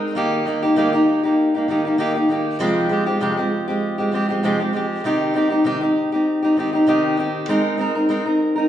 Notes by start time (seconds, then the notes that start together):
Already playing: G#3 C4 D#4 A#4
0.15 D#3 A#3 D#4 G4
0.45 D#3 A#3 D#4 G4
0.62 A#3 D#4 G4
0.76 D#3 A#3 D#4 G4
0.93 A#3 D#4 G4
1.23 A#3 D#4 G4
1.55 A#3 D#4 G4
1.68 D#3 A#3 D#4 G4
1.85 A#3 D#4 G4
1.98 D#3 A#3 D#4 G4
2.15 A#3 D#4 G4
2.29 D#3 A#3 D#4 G4
2.59 F2 C3 F3 G#3 C4 G4
2.89 F3 G#3 C4 G4
3.06 F3 G#3 C4 G4
3.20 F2 C3 F3 G#3 C4 G4
3.37 F3 G#3 C4 G4
3.68 F3 G#3 C4 G4
3.98 F3 G#3 C4 G4
4.12 F3 G#3 C4 G4
4.29 F3 G#3 C4 G4
4.43 F2 C3 F3 G#3 C4 G4
4.60 F3 G#3 C4 G4
4.73 F3 G#3 C4 G4
5.04 C3 D#3 C4 D#4 G4
5.34 D#3 C4 D#4 G4
5.50 C4 D#4 G4
5.64 C3 D#3 C4 D#4 G4
5.81 C4 D#4 G4
6.12 C4 D#4 G4
6.43 C4 D#4 G4
6.57 D#3 C4 D#4 G4
6.73 C4 D#4 G4
6.87 C3 D#3 C4 D#4 G4
7.17 D#3 C4 D#4 G4
7.48 G#3 C4 D#4 A#4
7.78 G#3 C4 D#4 A#4
7.95 C4 D#4 A#4
8.09 G#3 C4 D#4 A#4
8.25 C4 D#4 A#4
8.56 C4 D#4 A#4